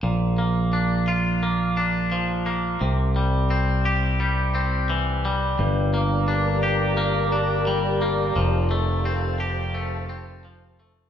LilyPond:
<<
  \new Staff \with { instrumentName = "Ambient pad" } { \time 4/4 \key bes \major \tempo 4 = 86 << { r1 | r1 | <bes' d'' bes''>1 | <c'' f'' a''>1 | } \\ { r1 | r1 | g'1~ | g'1 | } >> }
  \new Staff \with { instrumentName = "Clean electric guitar" } { \time 4/4 \key bes \major bes,8 bes8 d'8 f'8 bes8 d'8 f8 bes8 | c8 g8 c'8 g'8 g8 c'8 e8 g8 | g,8 bes8 d'8 g'8 bes8 d'8 g8 bes8 | f8 a8 c'8 g'8 a8 c'8 f8 a8 | }
  \new Staff \with { instrumentName = "Fingered electric bass" } { \clef bass \time 4/4 \key bes \major bes,,1 | c,1 | g,,1 | f,,1 | }
>>